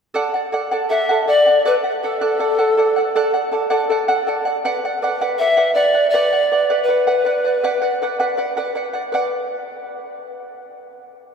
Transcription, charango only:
0.14 A4 D5 F#5
0.34 D5 F#5
0.52 A4 D5 F#5
0.71 A4 D5 F#5
0.90 A4 D5 F#5
1.09 A4 D5 F#5
1.27 A4 D5 F#5
1.46 D5 F#5
1.65 A4 D5 F#5
1.84 D5 F#5
2.03 A4 D5 F#5
2.21 A4 D5 F#5
2.39 A4 D5 F#5
2.59 A4 D5 F#5
2.77 A4 D5 F#5
2.96 D5 F#5
3.16 A4 D5 F#5
3.34 D5 F#5
3.52 A4 D5 F#5
3.70 A4 D5 F#5
3.90 A4 D5 F#5
4.08 A4 D5 F#5
4.27 A4 D5 F#5
4.45 D5 F#5
4.65 B4 D5 F#5
4.85 D5 F#5
5.02 B4 D5 F#5
5.21 B4 D5 F#5
5.40 B4 D5 F#5
5.57 B4 D5 F#5
5.75 B4 D5 F#5
5.95 D5 F#5
6.14 B4 D5 F#5
6.32 D5 F#5
6.52 B4 D5 F#5
6.70 B4 D5 F#5
6.88 B4 D5 F#5
7.07 B4 D5 F#5
7.25 B4 D5 F#5
7.44 D5 F#5
7.64 B4 D5 F#5
7.82 D5 F#5
8.02 B4 D5 F#5
8.20 B4 D5 F#5
8.37 B4 D5 F#5
8.57 B4 D5 F#5
8.75 B4 D5 F#5
8.93 D5 F#5
9.12 B4 D5 F#5

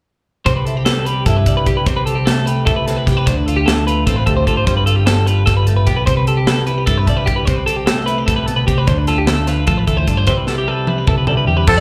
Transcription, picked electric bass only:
0.46 C2
1.26 G2
1.47 C2
1.67 C2
1.87 C2
2.67 C2
3.07 C2
3.27 D2
4.07 A1
4.27 D2
4.47 G#1
4.67 G1
5.47 G1
5.87 B1
6.07 C2
6.87 G2
7.08 C2
7.27 C2
7.47 C2
8.28 C2
8.68 C2
8.88 D2
9.68 A1
9.88 D2
10.08 G2
10.28 C2
11.08 C2
11.47 E2
11.68 F2

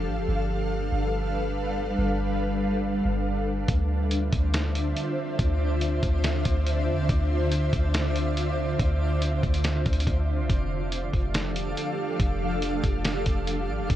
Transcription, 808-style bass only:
0.07 A1
0.18 F1
0.28 G1
0.92 G1
1.98 G1
3.05 G1
3.69 D2
4.33 D2
5.39 D2
6.03 D2
6.46 D2
6.88 F2
6.98 D2
7.09 D2
7.73 D2
8.79 D2
9.43 D2
9.86 D2
10.07 D2
10.39 C2
10.50 F1
11.13 F1
12.20 F1
12.84 F1
13.26 F1
13.69 A1
13.79 F1
13.90 G1

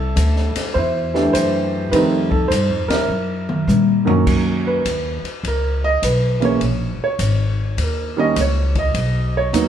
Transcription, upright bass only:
Already playing: C2
0.16 D2
0.56 muted upright bass stroke
0.75 E2
1.34 F#2
1.92 F2
2.50 G2
2.69 F2
2.89 D#2
3.08 F#2
3.67 A#2
4.26 F#2
4.85 D#2
5.23 muted upright bass stroke
5.43 C#2
6.02 B1
6.61 A#1
6.99 muted upright bass stroke
7.19 G#1
7.77 D#2
8.36 C#2
8.94 B1
9.53 D#2

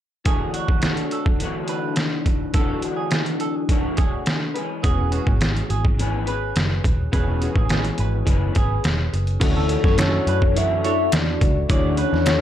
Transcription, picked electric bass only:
4.84 E1
5.27 G#1
5.70 G#1
6.57 F#1
6.85 D#1
7.13 E1
7.56 A1
7.99 G#1
8.27 F#1
8.56 G#1
8.85 E1
9.14 F#1
9.42 D2
9.84 F#2
10.27 F#2
11.13 E2
11.42 C#2
11.70 D2
12.13 E2

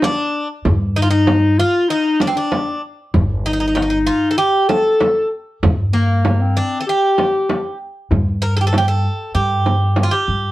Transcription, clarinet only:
0.03 D4
0.97 D#4
1.10 D#4
1.58 F4
1.89 D#4
2.20 D4
2.35 D4
3.45 D#4
4.38 G4
4.68 A4
5.93 A#3
6.41 C4
6.87 G4

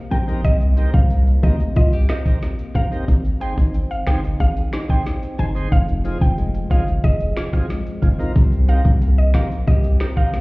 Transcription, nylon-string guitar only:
Already playing: C3 A#3 C4 G4
0.11 C4
0.44 C3
0.78 C4
1.10 A#3
1.43 C4
1.76 F4
1.93 G4
2.09 C4
2.42 A#3
2.75 C4
3.41 D#4
3.74 C4
4.07 D#4
4.40 G#4
4.73 D#4
5.06 C4
5.39 D#4
5.72 F2
6.05 C4
6.38 G#3
6.71 C4
7.04 G#4
7.37 C4
7.70 G#3
8.03 C4
8.36 C3
8.69 C4
9.02 A#3
9.35 C4
9.68 G4
10.01 C4
10.33 A#3

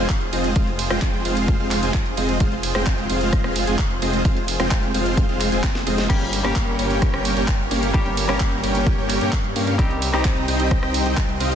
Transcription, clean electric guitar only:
6.09 G3 A#3 C#4 G4
6.43 G3 A#3 C#4 G4
7.94 G3 A#3 C#4 G4
8.28 G3 A#3 C#4 G4
9.78 G3 C4 D#4 G4
10.12 G3 C4 D#4 G4

